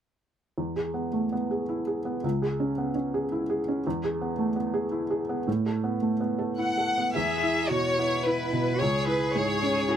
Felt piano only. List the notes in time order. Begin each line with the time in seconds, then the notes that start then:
0.58 E2
0.76 G#4
0.94 B3
1.13 A3
1.32 B3
1.51 G#4
1.69 E4
1.87 G#4
2.05 B3
2.24 C#2
2.42 G#4
2.60 C#4
2.78 B3
2.95 C#4
3.14 G#4
3.32 E4
3.50 G#4
3.68 C#4
3.87 E2
4.04 G#4
4.21 B3
4.38 A3
4.56 B3
4.74 G#4
4.92 E4
5.11 G#4
5.29 B3
5.48 A2
5.66 A4
5.84 B3
6.02 A3
6.21 B3
6.39 A4
6.58 E4
6.78 A4
6.98 B3
7.16 E2
7.43 E4
7.70 B2
7.99 B3
8.26 E4
8.53 B2
8.81 C#2
9.07 E4
9.35 G#2
9.63 C#4
9.88 E4